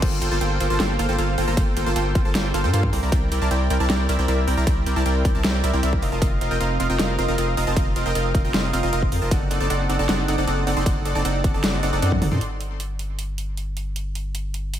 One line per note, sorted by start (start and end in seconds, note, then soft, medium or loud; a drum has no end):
0.02 0.20 G1 loud
0.02 0.19 A#3 loud
0.02 0.19 F4 medium
0.02 0.19 A4 medium
0.02 0.19 C5 medium
0.02 0.19 G5 loud
0.02 kick loud
0.02 closed hi-hat medium
0.02 crash medium
0.02 ride medium
0.21 0.30 G1 loud
0.21 0.30 A#3 medium
0.21 0.30 F4 medium
0.21 0.30 A4 medium
0.21 0.30 C5 medium
0.21 0.30 G5 loud
0.21 closed hi-hat medium
0.31 0.39 G1 loud
0.31 0.39 A#3 loud
0.31 0.39 F4 medium
0.31 0.39 A4 medium
0.31 0.39 C5 medium
0.31 0.39 A5 loud
0.41 0.59 G1 loud
0.41 0.58 A#3 medium
0.41 0.58 F4 medium
0.41 0.58 A4 medium
0.41 0.58 C5 medium
0.41 0.58 G5 medium
0.41 closed hi-hat medium
0.60 0.68 G1 loud
0.60 0.68 A#3 medium
0.60 0.68 F4 medium
0.60 0.68 A4 medium
0.60 0.68 C5 medium
0.60 0.68 G5 medium
0.60 closed hi-hat medium
0.70 0.78 G1 loud
0.70 0.77 A#3 loud
0.70 0.77 F4 medium
0.70 0.77 A4 medium
0.70 0.78 C5 medium
0.70 0.78 A5 loud
0.80 0.97 G1 loud
0.80 0.97 A#3 medium
0.80 0.97 F4 medium
0.80 0.97 A4 medium
0.80 0.97 C5 medium
0.80 0.97 G5 loud
0.80 snare loud
0.80 closed hi-hat medium
0.80 ride soft
0.99 1.07 G1 loud
0.99 1.07 A#3 medium
0.99 1.07 F4 medium
0.99 1.07 A4 medium
0.99 1.07 C5 medium
0.99 1.07 F5 loud
0.99 closed hi-hat medium
1.09 1.17 G1 loud
1.09 1.16 A#3 medium
1.09 1.16 F4 medium
1.09 1.16 A4 medium
1.09 1.16 C5 medium
1.09 1.16 G5 loud
1.18 1.36 G1 loud
1.18 1.36 A#3 medium
1.18 1.36 F4 medium
1.18 1.36 A4 medium
1.18 1.36 C5 medium
1.18 1.36 F5 medium
1.18 closed hi-hat medium
1.38 1.46 G1 loud
1.38 1.45 A#3 medium
1.38 1.45 F4 medium
1.38 1.45 A4 medium
1.38 1.45 C5 medium
1.38 1.45 G5 medium
1.38 open hi-hat loud
1.48 1.55 G1 medium
1.48 1.55 A#3 medium
1.48 1.55 F4 medium
1.48 1.55 A4 medium
1.48 1.55 C5 medium
1.48 1.55 A#5 loud
1.57 1.75 G1 loud
1.57 1.74 A#3 loud
1.57 1.74 F4 medium
1.57 1.74 A4 medium
1.57 1.74 C5 medium
1.57 1.74 G5 loud
1.57 kick loud
1.57 closed hi-hat medium
1.57 ride soft
1.76 1.84 G1 loud
1.76 1.85 A#3 medium
1.76 1.85 F4 medium
1.76 1.85 A4 medium
1.76 1.85 C5 medium
1.76 1.85 G5 loud
1.76 closed hi-hat medium
1.86 1.94 G1 medium
1.86 1.94 A#3 loud
1.86 1.94 F4 medium
1.86 1.94 A4 medium
1.86 1.94 C5 medium
1.86 1.94 A5 loud
1.96 2.13 G1 loud
1.96 2.13 A#3 medium
1.96 2.13 F4 medium
1.96 2.13 A4 medium
1.96 2.13 C5 medium
1.96 2.13 G5 medium
1.96 closed hi-hat medium
2.15 2.23 G1 loud
2.15 2.23 A#3 medium
2.15 2.23 F4 medium
2.15 2.23 C5 medium
2.15 2.23 G5 medium
2.15 kick loud
2.15 closed hi-hat medium
2.25 2.33 G1 loud
2.25 2.32 A#3 loud
2.25 2.32 F4 medium
2.25 2.32 A4 medium
2.25 2.32 C5 medium
2.25 2.32 A5 loud
2.35 2.52 G1 loud
2.35 2.52 A#3 medium
2.35 2.52 F4 medium
2.35 2.52 A4 medium
2.35 2.52 C5 medium
2.35 2.52 G5 loud
2.35 snare loud
2.35 closed hi-hat medium
2.35 ride soft
2.54 2.65 G1 medium
2.54 2.62 A#3 medium
2.54 2.62 F4 medium
2.54 2.62 A4 medium
2.54 2.62 C5 medium
2.54 2.62 F5 loud
2.54 closed hi-hat medium
2.64 2.71 G2 loud
2.64 2.71 A#3 medium
2.64 2.71 F4 medium
2.64 2.71 A4 medium
2.64 2.71 C5 medium
2.64 2.71 G5 loud
2.73 2.91 G2 medium
2.73 2.90 A#3 medium
2.73 2.90 F4 medium
2.73 2.90 A4 medium
2.73 2.90 C5 medium
2.73 2.90 F5 medium
2.73 closed hi-hat medium
2.83 kick medium
2.93 3.01 C2 medium
2.93 3.00 C4 medium
2.93 3.00 E4 medium
2.93 3.00 A#4 medium
2.93 3.00 D5 medium
2.93 3.00 G5 loud
2.93 open hi-hat medium
3.03 3.10 C2 medium
3.03 3.10 C4 medium
3.03 3.10 E4 medium
3.03 3.10 A#4 medium
3.03 3.10 D5 medium
3.03 3.10 A#5 loud
3.12 3.30 C2 loud
3.12 3.29 C4 loud
3.12 3.29 E4 medium
3.12 3.29 A#4 medium
3.12 3.29 D5 medium
3.12 3.29 G5 loud
3.12 kick loud
3.12 closed hi-hat medium
3.12 ride soft
3.32 3.39 C2 loud
3.32 3.40 C4 medium
3.32 3.40 E4 medium
3.32 3.40 A#4 medium
3.32 3.40 D5 medium
3.32 3.40 G5 loud
3.32 closed hi-hat medium
3.41 3.49 C2 medium
3.41 3.49 C4 loud
3.41 3.49 E4 medium
3.41 3.49 A#4 medium
3.41 3.49 D5 medium
3.41 3.49 A5 loud
3.51 3.68 C2 loud
3.51 3.68 C4 medium
3.51 3.68 E4 medium
3.51 3.68 A#4 medium
3.51 3.68 D5 medium
3.51 3.68 G5 medium
3.51 closed hi-hat medium
3.70 3.78 C2 medium
3.70 3.78 C4 medium
3.70 3.78 E4 medium
3.70 3.78 A#4 medium
3.70 3.78 D5 medium
3.70 3.78 G5 medium
3.70 closed hi-hat medium
3.80 3.88 C2 loud
3.80 3.87 C4 loud
3.80 3.87 E4 medium
3.80 3.87 A#4 medium
3.80 3.87 D5 medium
3.80 3.87 A5 loud
3.90 4.07 C2 loud
3.90 4.07 C4 medium
3.90 4.07 E4 medium
3.90 4.07 A#4 medium
3.90 4.07 D5 medium
3.90 4.07 G5 loud
3.90 snare loud
3.90 closed hi-hat medium
3.90 ride soft
4.09 4.17 C2 loud
4.09 4.17 C4 loud
4.09 4.17 E4 medium
4.09 4.17 A#4 medium
4.09 4.17 D5 medium
4.09 4.17 E5 loud
4.09 closed hi-hat medium
4.19 4.26 C2 loud
4.19 4.26 C4 medium
4.19 4.26 E4 medium
4.19 4.26 A#4 medium
4.19 4.26 D5 medium
4.19 4.26 G5 loud
4.28 4.46 C2 loud
4.28 4.45 C4 medium
4.28 4.45 E4 medium
4.28 4.45 A#4 medium
4.28 4.45 D5 medium
4.28 4.45 E5 medium
4.28 closed hi-hat medium
4.47 4.55 C2 loud
4.47 4.55 C4 medium
4.47 4.55 E4 medium
4.47 4.55 A#4 medium
4.47 4.55 D5 medium
4.47 4.55 G5 medium
4.47 open hi-hat loud
4.57 4.65 C2 loud
4.57 4.65 C4 medium
4.57 4.65 E4 medium
4.57 4.65 A#4 medium
4.57 4.65 D5 medium
4.57 4.65 A#5 loud
4.67 4.84 C2 loud
4.67 4.84 A#4 medium
4.67 4.84 D5 medium
4.67 4.84 G5 loud
4.67 kick loud
4.67 closed hi-hat medium
4.67 ride soft
4.86 4.94 C2 loud
4.86 4.95 C4 medium
4.86 4.95 E4 medium
4.86 4.95 A#4 medium
4.86 4.95 D5 medium
4.86 4.95 G5 loud
4.86 closed hi-hat medium
4.96 5.04 C2 medium
4.96 5.03 C4 loud
4.96 5.03 E4 medium
4.96 5.03 A#4 medium
4.96 5.03 D5 medium
4.96 5.03 A5 loud
5.05 5.23 C2 loud
5.05 5.23 C4 medium
5.05 5.23 E4 medium
5.05 5.23 A#4 medium
5.05 5.23 D5 medium
5.05 5.23 G5 medium
5.05 closed hi-hat medium
5.25 5.33 C2 medium
5.25 5.32 C4 medium
5.25 5.32 E4 medium
5.25 5.32 A#4 medium
5.25 5.32 D5 medium
5.25 5.32 G5 medium
5.25 kick loud
5.25 closed hi-hat medium
5.35 5.42 C2 loud
5.35 5.42 C4 loud
5.35 5.42 E4 medium
5.35 5.42 A#4 medium
5.35 5.42 D5 medium
5.35 5.42 A5 loud
5.44 5.62 C2 loud
5.44 5.61 C4 medium
5.44 5.61 E4 medium
5.44 5.61 A#4 medium
5.44 5.61 D5 medium
5.44 5.61 G5 loud
5.44 snare loud
5.44 closed hi-hat medium
5.44 ride soft
5.64 5.72 C2 loud
5.64 5.71 C4 loud
5.64 5.71 E4 medium
5.64 5.71 A#4 medium
5.64 5.71 D5 medium
5.64 5.71 E5 loud
5.64 closed hi-hat medium
5.73 5.81 C2 loud
5.73 5.81 C4 medium
5.73 5.81 E4 medium
5.73 5.81 A#4 medium
5.73 5.81 D5 medium
5.73 5.81 G5 loud
5.83 6.01 C2 loud
5.83 6.00 C4 medium
5.83 6.00 E4 medium
5.83 6.00 A#4 medium
5.83 6.00 D5 medium
5.83 6.00 E5 medium
5.83 closed hi-hat medium
5.93 kick medium
6.02 6.10 F1 loud
6.02 6.10 C4 medium
6.02 6.10 F4 medium
6.02 6.10 A#4 medium
6.02 6.10 D#5 medium
6.02 6.10 F5 medium
6.02 open hi-hat medium
6.12 6.20 F1 medium
6.12 6.19 C4 medium
6.12 6.19 F4 medium
6.12 6.19 A#4 medium
6.12 6.19 D#5 medium
6.12 6.19 A5 loud
6.22 6.39 F1 loud
6.22 6.39 C4 loud
6.22 6.39 F4 medium
6.22 6.39 A#4 medium
6.22 6.39 D#5 medium
6.22 6.39 F5 loud
6.22 kick loud
6.22 closed hi-hat medium
6.22 ride soft
6.41 6.49 F1 medium
6.41 6.49 C4 medium
6.41 6.49 F4 medium
6.41 6.49 A#4 medium
6.41 6.49 D#5 medium
6.41 6.49 F5 loud
6.41 closed hi-hat medium
6.51 6.59 F1 loud
6.51 6.58 C4 loud
6.51 6.58 F4 medium
6.51 6.58 A#4 medium
6.51 6.58 D#5 medium
6.51 6.58 G5 loud
6.60 6.78 F1 loud
6.60 6.78 C4 medium
6.60 6.78 F4 medium
6.60 6.78 A#4 medium
6.60 6.78 D#5 medium
6.60 6.78 F5 medium
6.60 closed hi-hat medium
6.80 6.88 F1 loud
6.80 6.87 C4 medium
6.80 6.87 F4 medium
6.80 6.87 A#4 medium
6.80 6.87 D#5 medium
6.80 6.87 F5 medium
6.80 closed hi-hat medium
6.90 6.97 F1 loud
6.90 6.97 C4 loud
6.90 6.97 F4 medium
6.90 6.97 A#4 medium
6.90 6.97 D#5 medium
6.90 6.97 G5 loud
6.99 7.17 F1 loud
6.99 7.16 C4 medium
6.99 7.16 F4 medium
6.99 7.16 A#4 medium
6.99 7.16 D#5 medium
6.99 7.16 F5 loud
6.99 snare loud
6.99 closed hi-hat medium
6.99 ride soft
7.19 7.26 F1 loud
7.19 7.26 C4 medium
7.19 7.26 F4 medium
7.19 7.26 A#4 medium
7.19 7.26 D#5 medium
7.19 7.26 F5 loud
7.19 closed hi-hat medium
7.28 7.36 F1 loud
7.28 7.36 C4 medium
7.28 7.36 F4 medium
7.28 7.36 A#4 medium
7.28 7.36 D#5 medium
7.28 7.36 F5 medium
7.38 7.55 F1 loud
7.38 7.55 C4 medium
7.38 7.55 F4 medium
7.38 7.55 A#4 medium
7.38 7.55 D#5 medium
7.38 7.55 F5 medium
7.38 closed hi-hat medium
7.57 7.65 F1 loud
7.57 7.65 C4 medium
7.57 7.65 F4 medium
7.57 7.65 A#4 medium
7.57 7.65 D#5 medium
7.57 7.65 F5 medium
7.57 open hi-hat medium
7.67 7.75 F1 loud
7.67 7.74 C4 medium
7.67 7.74 F4 medium
7.67 7.74 A#4 medium
7.67 7.74 D#5 medium
7.67 7.74 A5 loud
7.76 7.94 F1 loud
7.76 7.94 C4 loud
7.76 7.94 F4 medium
7.76 7.94 A#4 medium
7.76 7.94 D#5 medium
7.76 7.94 F5 loud
7.76 kick loud
7.76 closed hi-hat medium
7.76 ride soft
7.96 8.04 F1 loud
7.96 8.04 C4 medium
7.96 8.04 F4 medium
7.96 8.04 A#4 medium
7.96 8.04 D#5 medium
7.96 8.04 F5 loud
7.96 closed hi-hat medium
8.06 8.13 F1 loud
8.06 8.13 C4 loud
8.06 8.13 F4 medium
8.06 8.13 A#4 medium
8.06 8.13 D#5 medium
8.06 8.13 G5 loud
8.15 8.33 F1 loud
8.15 8.32 C4 medium
8.15 8.32 F4 medium
8.15 8.32 A#4 medium
8.15 8.32 D#5 medium
8.15 8.32 F5 medium
8.15 closed hi-hat medium
8.35 8.42 F1 loud
8.35 8.42 F4 medium
8.35 8.42 A#4 medium
8.35 8.42 D#5 medium
8.35 8.42 F5 medium
8.35 kick loud
8.35 closed hi-hat medium
8.44 8.52 F1 loud
8.44 8.52 C4 loud
8.44 8.52 F4 medium
8.44 8.52 A#4 medium
8.44 8.52 D#5 medium
8.44 8.52 G5 loud
8.54 8.72 F1 loud
8.54 8.71 C4 medium
8.54 8.71 F4 medium
8.54 8.71 A#4 medium
8.54 8.71 D#5 medium
8.54 8.71 F5 loud
8.54 snare loud
8.54 closed hi-hat medium
8.54 ride soft
8.73 8.81 F1 loud
8.73 8.81 C4 loud
8.73 8.81 F4 medium
8.73 8.81 A#4 medium
8.73 8.81 D#5 medium
8.73 8.81 F5 loud
8.73 closed hi-hat medium
8.83 8.91 F1 loud
8.83 8.90 C4 medium
8.83 8.90 F4 medium
8.83 8.90 A#4 medium
8.83 8.90 D#5 medium
8.83 8.90 F5 loud
8.93 9.10 F1 loud
8.93 9.10 C4 medium
8.93 9.10 F4 medium
8.93 9.10 A#4 medium
8.93 9.10 D#5 medium
8.93 9.10 F5 medium
8.93 closed hi-hat medium
9.02 kick medium
9.12 9.20 F2 loud
9.12 9.19 C4 medium
9.12 9.19 F4 medium
9.12 9.19 A#4 medium
9.12 9.19 D#5 medium
9.12 9.19 F5 medium
9.12 open hi-hat loud
9.22 9.30 F1 medium
9.22 9.29 C4 medium
9.22 9.29 F4 medium
9.22 9.29 A#4 medium
9.22 9.29 D#5 medium
9.22 9.29 A5 loud
9.31 9.49 F#1 loud
9.31 9.48 C4 loud
9.31 9.48 D#4 medium
9.31 9.48 A4 medium
9.31 9.48 D5 medium
9.31 9.48 F#5 loud
9.31 kick loud
9.31 closed hi-hat medium
9.31 ride medium
9.51 9.59 F#1 loud
9.51 9.59 C4 medium
9.51 9.59 D#4 medium
9.51 9.59 A4 medium
9.51 9.59 D5 medium
9.51 9.59 F#5 loud
9.51 closed hi-hat medium
9.60 9.68 F#1 loud
9.60 9.68 C4 loud
9.60 9.68 D#4 medium
9.60 9.68 A4 medium
9.60 9.68 D5 medium
9.60 9.68 A5 loud
9.70 9.88 F#1 loud
9.70 9.87 C4 medium
9.70 9.87 D#4 medium
9.70 9.87 A4 medium
9.70 9.87 D5 medium
9.70 9.87 F#5 medium
9.70 closed hi-hat medium
9.89 9.97 F#1 loud
9.89 9.97 C4 medium
9.89 9.97 D#4 medium
9.89 9.97 A4 medium
9.89 9.97 D5 medium
9.89 9.97 F#5 medium
9.89 closed hi-hat medium
9.99 10.07 F#1 loud
9.99 10.07 C4 loud
9.99 10.06 D#4 medium
9.99 10.06 A4 medium
9.99 10.07 D5 medium
9.99 10.07 A5 loud
10.09 10.26 F#1 loud
10.09 10.26 C4 medium
10.09 10.26 D#4 medium
10.09 10.26 A4 medium
10.09 10.26 D5 medium
10.09 10.26 F#5 loud
10.09 snare loud
10.09 closed hi-hat medium
10.09 ride soft
10.28 10.36 F#1 loud
10.28 10.36 C4 loud
10.28 10.36 D#4 medium
10.28 10.36 A4 medium
10.28 10.36 D5 medium
10.28 10.36 F#5 loud
10.28 closed hi-hat medium
10.38 10.46 F#1 loud
10.38 10.45 C4 medium
10.38 10.45 D#4 medium
10.38 10.45 A4 medium
10.38 10.45 D5 medium
10.38 10.45 F#5 medium
10.47 10.65 F#1 loud
10.47 10.65 C4 medium
10.47 10.65 D#4 medium
10.47 10.65 A4 medium
10.47 10.65 D5 medium
10.47 10.65 F#5 medium
10.47 closed hi-hat medium
10.67 10.75 F#1 loud
10.67 10.74 C4 medium
10.67 10.74 D#4 medium
10.67 10.74 A4 medium
10.67 10.74 D5 medium
10.67 10.74 F#5 medium
10.67 open hi-hat loud
10.77 10.84 F#1 loud
10.77 10.84 C4 medium
10.77 10.84 D#4 medium
10.77 10.84 A4 medium
10.77 10.84 D5 medium
10.77 10.84 C6 loud
10.86 11.04 F#1 loud
10.86 11.03 C4 loud
10.86 11.03 A4 medium
10.86 11.03 D5 medium
10.86 11.03 F#5 loud
10.86 kick loud
10.86 closed hi-hat medium
10.86 ride medium
11.05 11.13 F#1 loud
11.05 11.14 C4 medium
11.05 11.14 D#4 medium
11.05 11.14 A4 medium
11.05 11.14 D5 medium
11.05 11.14 F#5 loud
11.05 closed hi-hat medium
11.15 11.23 F#1 loud
11.15 11.23 C4 loud
11.15 11.23 D#4 medium
11.15 11.23 A4 medium
11.15 11.23 D5 medium
11.15 11.23 A5 loud
11.25 11.42 F#1 loud
11.25 11.42 C4 medium
11.25 11.42 D#4 medium
11.25 11.42 A4 medium
11.25 11.42 D5 medium
11.25 11.42 F#5 medium
11.25 closed hi-hat medium
11.44 11.52 F#1 loud
11.44 11.52 C4 medium
11.44 11.52 D#4 medium
11.44 11.52 A4 medium
11.44 11.52 D5 medium
11.44 11.52 F#5 medium
11.44 kick loud
11.44 closed hi-hat medium
11.54 11.62 F#1 loud
11.54 11.61 C4 loud
11.54 11.61 D#4 medium
11.54 11.61 A4 medium
11.54 11.61 D5 medium
11.54 11.61 A5 loud
11.64 11.81 F#1 loud
11.64 11.81 C4 medium
11.64 11.81 D#4 medium
11.64 11.81 A4 medium
11.64 11.81 D5 medium
11.64 11.81 F#5 loud
11.64 snare loud
11.64 closed hi-hat medium
11.64 ride soft
11.83 11.91 F#1 loud
11.83 11.91 C4 medium
11.83 11.91 D#4 medium
11.83 11.91 A4 medium
11.83 11.91 D5 medium
11.83 11.91 F#5 loud
11.83 closed hi-hat medium
11.93 12.00 F#1 loud
11.93 12.00 C4 medium
11.93 12.00 D#4 medium
11.93 12.00 A4 medium
11.93 12.00 D5 medium
11.93 12.00 F#5 loud
12.02 12.23 F#2 loud
12.02 12.19 C4 medium
12.02 12.19 D#4 medium
12.02 12.19 A4 medium
12.02 12.19 D5 medium
12.02 12.19 F#5 medium
12.02 closed hi-hat medium
12.12 kick medium
12.12 high tom medium
12.22 12.30 F#1 loud
12.22 12.29 C4 medium
12.22 12.29 D#4 medium
12.22 12.29 A4 medium
12.22 12.29 D5 medium
12.22 12.29 F#5 medium
12.22 open hi-hat loud
12.22 mid tom medium
12.31 12.39 F#2 loud
12.31 12.39 C4 medium
12.31 12.39 D#4 medium
12.31 12.39 A4 medium
12.31 12.39 D5 medium
12.31 12.39 C6 loud
12.31 mid tom medium
12.41 14.79 G1 medium
12.41 closed hi-hat medium
12.61 closed hi-hat medium
12.80 closed hi-hat medium
12.99 closed hi-hat medium
13.19 closed hi-hat medium
13.38 closed hi-hat medium
13.57 closed hi-hat medium
13.77 closed hi-hat medium
13.96 closed hi-hat medium
14.15 closed hi-hat medium
14.35 closed hi-hat medium
14.54 closed hi-hat medium
14.74 closed hi-hat medium